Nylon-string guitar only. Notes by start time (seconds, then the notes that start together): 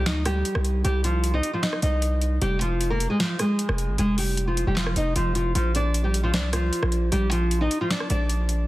0.06 D#4 D#5
0.26 G3 G4
0.84 G3 G4
1.04 F3 F4
1.34 D#4 D#5
1.53 F3 F4
1.63 D#4 D#5
1.82 D#4 D#5
2.42 G3 G4
2.61 F3 F4
2.90 A#3 A#4
3.10 G#3 G#4
3.20 F3 F4
3.40 G#3 G#4
3.99 G#3 G#4
4.18 G3 G4
4.47 F3 F4
4.67 G3 G4
4.77 F3 F4
4.97 D#4 D#5
5.16 F3 F4
5.35 F3 F4
5.55 F3 F4
5.75 D4 D5
6.04 G3 G4
6.23 F3 F4
6.33 D4 D5
6.53 F3 F4
7.12 G3 G4
7.32 F3 F4
7.61 D#4 D#5
7.81 F3 F4
7.91 D4 D5
8.10 D4 D5